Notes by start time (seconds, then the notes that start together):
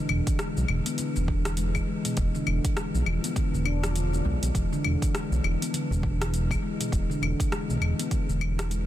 0.08 E1 E3, udu, claves
0.27 E3, kick, closed hi-hat, shaker
0.39 G#3, cross-stick, closed hi-hat, shaker
0.57 B1 E3, shaker
0.68 E1 E3, claves
0.86 B3, closed hi-hat, shaker
0.98 D3, closed hi-hat, shaker
1.16 E1 D3, udu, shaker
1.28 E3, kick
1.45 E3, cross-stick, closed hi-hat, shaker
1.57 G#3, closed hi-hat, shaker
1.75 E3, kick, claves, shaker
1.88 G#3
2.05 B2, closed hi-hat, shaker
2.17 E1, kick, closed hi-hat, shaker
2.35 D3, shaker
2.47 E1 E3, claves
2.65 E3, kick, closed hi-hat, shaker
2.77 G#3, cross-stick, closed hi-hat, shaker
2.94 B1 F3, shaker
3.06 E1 E3, claves
3.24 B3, closed hi-hat, shaker
3.36 D3, kick, closed hi-hat, shaker
3.54 E1 D3, shaker
3.65 D4, claves
3.83 F3, cross-stick, closed hi-hat, shaker
3.95 D3, closed hi-hat, shaker
4.13 E1 E3, shaker
4.25 B1 G#3, udu
4.42 B1 E3, closed hi-hat, shaker
4.55 E1 E3, kick, closed hi-hat, shaker
4.73 D3, shaker
4.84 E1 E3, udu, claves
5.02 E3, kick, closed hi-hat, shaker
5.14 G#3, cross-stick, closed hi-hat, shaker
5.31 B1 E3, shaker
5.44 E1 E3, claves
5.62 B3, closed hi-hat, shaker
5.73 D3, closed hi-hat, shaker
5.90 E1 D3, udu, shaker
6.03 E3, kick
6.21 E3, cross-stick, closed hi-hat, shaker
6.33 G#3, closed hi-hat, shaker
6.51 E3, kick, claves, shaker
6.63 G#3
6.80 B2, closed hi-hat, shaker
6.92 E1 E3, kick, closed hi-hat, shaker
7.10 D3, shaker
7.22 E1 E3, claves
7.39 E3, kick, closed hi-hat, shaker
7.51 G#3, cross-stick, closed hi-hat, shaker
7.69 B1 E3, shaker
7.81 E1 E3, claves
7.99 B3, closed hi-hat, shaker
8.11 D3, kick, closed hi-hat, shaker
8.29 E1 D3, shaker
8.41 E3, claves
8.58 E3, cross-stick, closed hi-hat, shaker
8.70 G#3, closed hi-hat, shaker